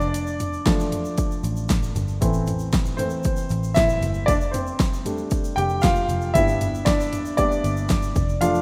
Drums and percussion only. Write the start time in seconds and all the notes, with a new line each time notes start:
0.01 shaker
0.14 closed hi-hat, shaker
0.27 shaker
0.40 closed hi-hat, floor tom, shaker
0.53 shaker
0.66 kick, snare, closed hi-hat, shaker
0.80 shaker
0.92 closed hi-hat, floor tom, shaker
1.05 shaker
1.18 kick, closed hi-hat, shaker
1.31 shaker
1.44 closed hi-hat, shaker
1.56 shaker
1.69 kick, snare, closed hi-hat, shaker
1.83 shaker
1.95 closed hi-hat, floor tom, shaker
2.08 shaker
2.22 kick, closed hi-hat, shaker
2.33 shaker
2.47 closed hi-hat, floor tom, shaker
2.59 shaker
2.72 kick, snare, closed hi-hat, shaker
2.85 shaker
2.98 closed hi-hat, floor tom, shaker
3.10 shaker
3.23 kick, closed hi-hat, shaker
3.36 shaker
3.49 closed hi-hat, shaker
3.63 shaker
3.75 kick, snare, closed hi-hat, shaker
3.89 shaker
4.02 closed hi-hat, floor tom, shaker
4.14 shaker
4.28 kick, closed hi-hat, shaker
4.41 shaker
4.54 closed hi-hat, floor tom, shaker
4.67 shaker
4.80 kick, snare, closed hi-hat, shaker
4.93 shaker
5.06 closed hi-hat, floor tom, shaker
5.18 shaker
5.31 kick, closed hi-hat, shaker
5.44 shaker
5.57 closed hi-hat, shaker
5.69 shaker
5.82 kick, snare, closed hi-hat, shaker
5.96 shaker
6.09 closed hi-hat, floor tom, shaker
6.21 shaker
6.35 kick, closed hi-hat, shaker
6.48 shaker
6.61 closed hi-hat, floor tom, shaker
6.75 shaker
6.86 kick, snare, closed hi-hat, shaker
7.00 shaker
7.12 closed hi-hat, floor tom, shaker
7.25 shaker
7.38 kick, closed hi-hat, shaker
7.52 shaker
7.64 closed hi-hat, shaker
7.77 shaker
7.89 kick, snare, closed hi-hat, shaker
8.02 shaker
8.15 kick, closed hi-hat, floor tom, shaker
8.29 shaker
8.41 closed hi-hat, shaker
8.55 shaker